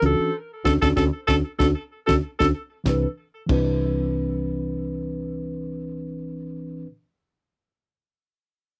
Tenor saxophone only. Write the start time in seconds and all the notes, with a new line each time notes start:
0.06 A4
0.65 A4
0.82 A4
0.97 A4
1.27 A4
1.59 A4
2.07 A4
2.39 A4